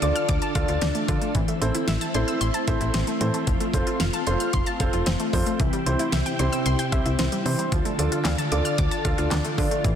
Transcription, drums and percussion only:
0.02 closed hi-hat medium
0.16 closed hi-hat medium
0.29 kick medium
0.29 closed hi-hat medium
0.42 closed hi-hat medium
0.55 kick loud
0.55 closed hi-hat medium
0.68 closed hi-hat medium
0.81 snare loud
0.81 closed hi-hat medium
0.95 closed hi-hat medium
1.08 kick medium
1.08 closed hi-hat medium
1.22 closed hi-hat medium
1.35 kick loud
1.35 closed hi-hat medium
1.48 closed hi-hat medium
1.62 closed hi-hat medium
1.75 closed hi-hat medium
1.88 snare loud
1.88 closed hi-hat medium
2.01 closed hi-hat medium
2.14 closed hi-hat medium
2.28 closed hi-hat medium
2.41 closed hi-hat medium
2.54 closed hi-hat medium
2.68 kick loud
2.68 closed hi-hat medium
2.81 closed hi-hat medium
2.94 snare loud
2.94 closed hi-hat medium
3.07 closed hi-hat medium
3.21 closed hi-hat medium
3.34 closed hi-hat medium
3.47 kick loud
3.47 closed hi-hat medium
3.60 closed hi-hat medium
3.74 kick loud
3.74 closed hi-hat medium
3.87 closed hi-hat medium
4.00 snare loud
4.00 closed hi-hat medium
4.13 closed hi-hat medium
4.27 closed hi-hat medium
4.40 closed hi-hat medium
4.53 kick loud
4.53 closed hi-hat medium
4.66 closed hi-hat medium
4.80 kick loud
4.80 closed hi-hat medium
4.93 closed hi-hat medium
5.06 snare loud
5.06 closed hi-hat medium
5.20 closed hi-hat medium
5.33 kick medium
5.33 open hi-hat medium
5.46 closed hi-hat medium
5.60 kick loud
5.60 closed hi-hat medium
5.73 closed hi-hat medium
5.86 closed hi-hat medium
5.99 closed hi-hat medium
6.12 snare loud
6.12 closed hi-hat medium
6.26 closed hi-hat medium
6.39 closed hi-hat medium
6.53 closed hi-hat medium
6.66 closed hi-hat medium
6.79 closed hi-hat medium
6.92 kick loud
6.92 closed hi-hat medium
7.06 closed hi-hat medium
7.19 snare loud
7.19 closed hi-hat medium
7.32 closed hi-hat medium
7.46 open hi-hat medium
7.59 closed hi-hat medium
7.72 kick loud
7.72 closed hi-hat medium
7.85 closed hi-hat medium
7.99 closed hi-hat medium
8.12 closed hi-hat medium
8.25 snare loud
8.25 clap loud
8.25 closed hi-hat medium
8.38 closed hi-hat medium
8.52 closed hi-hat medium
8.65 closed hi-hat medium
8.78 kick loud
8.78 closed hi-hat medium
8.91 closed hi-hat medium
9.05 kick loud
9.05 closed hi-hat medium
9.18 closed hi-hat medium
9.31 snare loud
9.31 clap loud
9.31 closed hi-hat medium
9.45 closed hi-hat medium
9.58 kick medium
9.58 open hi-hat medium
9.71 closed hi-hat medium
9.84 kick loud
9.84 closed hi-hat medium

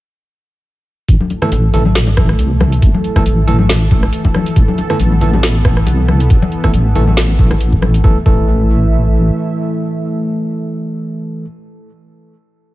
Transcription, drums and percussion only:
1.08 kick loud
1.08 closed hi-hat medium
1.20 high conga medium
1.30 closed hi-hat medium
1.30 muted conga medium
1.42 cross-stick medium
1.42 low conga medium
1.52 closed hi-hat medium
1.52 muted conga medium
1.52 high conga medium
1.74 open hi-hat loud
1.74 low conga medium
1.85 muted conga medium
1.85 high conga medium
1.95 snare loud
1.95 closed hi-hat medium
2.07 muted conga medium
2.17 kick loud
2.17 cross-stick medium
2.17 closed hi-hat medium
2.17 high conga medium
2.29 cross-stick medium
2.39 closed hi-hat medium
2.39 muted conga soft
2.61 cross-stick medium
2.61 muted conga medium
2.61 high conga medium
2.72 closed hi-hat medium
2.82 kick loud
2.82 closed hi-hat medium
2.94 muted conga soft
2.94 high conga loud
3.04 closed hi-hat medium
3.16 kick medium
3.16 cross-stick medium
3.16 muted conga medium
3.16 low conga medium
3.26 closed hi-hat medium
3.26 high conga medium
3.48 open hi-hat loud
3.48 muted conga medium
3.48 low conga medium
3.59 high conga loud
3.69 snare loud
3.69 closed hi-hat medium
3.69 muted conga medium
3.91 kick loud
3.91 closed hi-hat medium
3.91 high conga medium
4.03 cross-stick medium
4.03 muted conga medium
4.13 closed hi-hat medium
4.25 kick medium
4.25 muted conga medium
4.34 cross-stick medium
4.34 high conga loud
4.46 closed hi-hat medium
4.56 kick loud
4.56 closed hi-hat medium
4.56 muted conga medium
4.68 high conga medium
4.78 closed hi-hat medium
4.78 muted conga medium
4.90 cross-stick medium
4.90 low conga medium
5.00 closed hi-hat medium
5.00 high conga medium
5.12 muted conga medium
5.21 open hi-hat medium
5.21 low conga medium
5.33 muted conga medium
5.33 high conga loud
5.43 snare loud
5.43 closed hi-hat medium
5.65 kick loud
5.65 cross-stick medium
5.65 closed hi-hat medium
5.65 muted conga medium
5.65 high conga medium
5.77 cross-stick medium
5.87 closed hi-hat medium
5.87 muted conga medium
6.08 cross-stick medium
6.08 high conga medium
6.20 closed hi-hat medium
6.20 muted conga soft
6.30 kick loud
6.30 closed hi-hat medium
6.42 muted conga medium
6.42 high conga loud
6.52 closed hi-hat medium
6.64 kick medium
6.64 cross-stick medium
6.64 low conga medium
6.74 closed hi-hat medium
6.74 muted conga medium
6.74 high conga medium
6.95 open hi-hat medium
6.95 muted conga medium
6.95 low conga medium
7.07 high conga medium
7.17 snare loud
7.17 closed hi-hat medium
7.29 muted conga medium
7.39 kick loud
7.39 closed hi-hat medium
7.39 high conga medium
7.51 cross-stick medium
7.51 muted conga medium
7.61 closed hi-hat medium
7.73 kick medium
7.82 cross-stick medium
7.82 muted conga soft
7.82 high conga medium
7.94 closed hi-hat medium
8.04 kick loud
8.26 kick loud

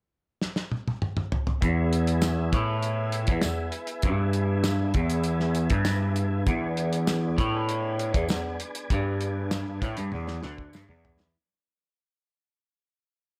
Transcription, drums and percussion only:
0.42 snare medium
0.56 snare medium
0.72 high tom medium
0.88 high tom medium
1.02 mid tom medium
1.17 mid tom medium
1.32 floor tom loud
1.47 floor tom loud
1.62 kick medium
1.62 closed hi-hat medium
1.93 closed hi-hat medium
2.07 closed hi-hat medium
2.22 snare loud
2.22 closed hi-hat medium
2.22 tambourine loud
2.53 kick loud
2.53 closed hi-hat medium
2.83 closed hi-hat medium
3.12 closed hi-hat medium
3.27 kick loud
3.27 closed hi-hat medium
3.42 snare loud
3.42 closed hi-hat medium
3.42 tambourine loud
3.72 closed hi-hat medium
3.87 closed hi-hat medium
4.02 kick loud
4.02 closed hi-hat medium
4.33 closed hi-hat medium
4.64 snare loud
4.64 closed hi-hat medium
4.64 tambourine medium
4.94 kick loud
4.94 closed hi-hat medium
5.10 closed hi-hat medium
5.24 closed hi-hat medium
5.40 snare soft
5.55 closed hi-hat medium
5.70 kick loud
5.70 closed hi-hat medium
5.85 snare loud
5.85 closed hi-hat medium
5.85 tambourine medium
6.16 closed hi-hat medium
6.47 kick loud
6.47 closed hi-hat medium
6.77 closed hi-hat medium
6.93 closed hi-hat medium
7.07 snare loud
7.07 closed hi-hat medium
7.07 tambourine medium
7.38 kick loud
7.38 closed hi-hat medium
7.69 closed hi-hat medium
7.99 closed hi-hat medium
8.14 kick loud
8.14 closed hi-hat medium
8.29 snare loud
8.29 closed hi-hat medium
8.29 tambourine medium
8.60 closed hi-hat medium
8.75 closed hi-hat medium
8.90 kick loud
8.90 closed hi-hat medium
9.21 closed hi-hat medium
9.51 snare loud
9.51 closed hi-hat medium
9.51 tambourine loud
9.82 kick loud
9.82 closed hi-hat medium
9.97 closed hi-hat medium
10.12 high tom medium
10.27 snare medium
10.43 snare medium
10.58 kick medium
10.73 snare medium
10.73 tambourine loud
10.89 mid tom medium
11.05 floor tom loud
11.20 snare medium

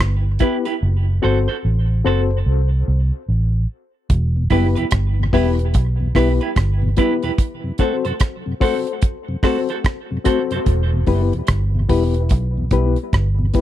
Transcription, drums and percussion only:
0.01 cross-stick loud
0.39 kick medium
0.39 closed hi-hat medium
0.65 closed hi-hat soft
4.10 kick loud
4.10 closed hi-hat medium
4.50 kick medium
4.50 open hi-hat soft
4.76 closed hi-hat medium
4.91 kick loud
4.91 cross-stick loud
4.91 closed hi-hat loud
5.33 kick medium
5.33 open hi-hat medium
5.59 closed hi-hat medium
5.74 kick loud
5.74 closed hi-hat loud
6.15 kick medium
6.15 cross-stick medium
6.15 open hi-hat medium
6.41 closed hi-hat soft
6.56 kick loud
6.56 cross-stick loud
6.56 closed hi-hat medium
6.97 kick loud
6.97 closed hi-hat medium
7.22 closed hi-hat soft
7.38 kick loud
7.38 closed hi-hat medium
7.78 kick medium
7.78 closed hi-hat medium
8.05 closed hi-hat soft
8.20 kick loud
8.20 cross-stick loud
8.20 closed hi-hat loud
8.61 kick loud
8.61 open hi-hat medium
8.87 closed hi-hat soft
9.02 kick loud
9.02 closed hi-hat loud
9.43 kick medium
9.43 cross-stick medium
9.43 open hi-hat medium
9.69 closed hi-hat soft
9.84 kick loud
9.84 cross-stick loud
9.84 closed hi-hat medium
10.25 kick loud
10.25 closed hi-hat medium
10.51 closed hi-hat soft
10.66 kick loud
10.66 closed hi-hat medium
11.06 kick medium
11.06 open hi-hat soft
11.33 closed hi-hat medium
11.47 kick loud
11.47 cross-stick loud
11.47 closed hi-hat medium
11.89 kick medium
11.89 open hi-hat medium
12.14 closed hi-hat medium
12.29 kick loud
12.29 closed hi-hat loud
12.71 kick loud
12.71 closed hi-hat medium
12.96 closed hi-hat soft
13.13 kick loud
13.13 cross-stick medium
13.13 closed hi-hat medium
13.54 kick medium
13.54 closed hi-hat medium

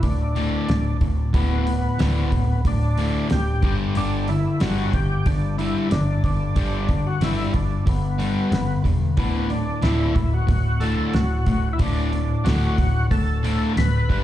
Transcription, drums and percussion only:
0.03 kick loud
0.03 open hi-hat medium
0.36 open hi-hat soft
0.69 snare loud
0.69 open hi-hat medium
1.01 kick medium
1.01 open hi-hat soft
1.34 kick loud
1.34 open hi-hat medium
1.67 open hi-hat medium
1.99 snare loud
1.99 open hi-hat medium
2.32 kick medium
2.32 open hi-hat soft
2.65 kick loud
2.65 open hi-hat medium
2.98 open hi-hat soft
3.30 snare loud
3.30 open hi-hat medium
3.62 kick loud
3.62 open hi-hat soft
3.95 open hi-hat medium
4.28 open hi-hat soft
4.60 snare loud
4.60 open hi-hat medium
4.93 kick medium
4.93 open hi-hat soft
5.26 kick loud
5.26 open hi-hat medium
5.59 open hi-hat soft
5.91 snare loud
5.91 open hi-hat medium
6.24 kick medium
6.24 open hi-hat soft
6.56 kick loud
6.56 open hi-hat medium
6.89 kick medium
6.89 open hi-hat soft
7.21 snare medium
7.21 open hi-hat medium
7.54 kick medium
7.54 open hi-hat soft
7.87 kick loud
7.87 open hi-hat medium
8.20 open hi-hat medium
8.52 snare loud
8.52 open hi-hat medium
8.85 kick medium
8.85 open hi-hat soft
9.17 kick medium
9.17 open hi-hat medium
9.50 open hi-hat soft
9.82 snare medium
9.82 open hi-hat medium
10.16 kick medium
10.16 open hi-hat soft
10.49 kick loud
10.49 open hi-hat medium
10.81 open hi-hat soft
11.14 snare loud
11.14 open hi-hat medium
11.46 kick medium
11.46 open hi-hat soft
11.79 kick loud
11.79 open hi-hat medium
12.13 open hi-hat soft
12.46 snare loud
12.46 open hi-hat medium
12.78 kick medium
12.78 open hi-hat soft
13.11 kick loud
13.11 open hi-hat medium
13.44 open hi-hat medium
13.77 snare medium
13.77 open hi-hat medium
14.10 kick medium
14.10 open hi-hat soft

